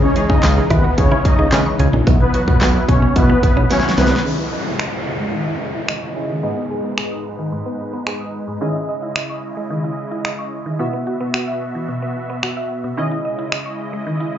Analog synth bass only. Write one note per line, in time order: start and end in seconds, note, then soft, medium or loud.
0.30 0.38 C#3 medium
0.43 0.60 C#2 loud
0.70 0.87 D#2 medium
0.98 1.14 C#3 loud
1.39 1.47 C#2 medium
1.52 1.61 C#3 loud
1.80 1.88 C#2 loud
1.93 2.02 A#1 medium
2.07 2.23 B1 loud
2.48 2.56 B2 medium
2.61 2.78 B1 loud
2.89 3.05 B1 medium
3.16 3.33 B2 loud
3.57 3.65 B1 medium
3.98 4.14 C2 loud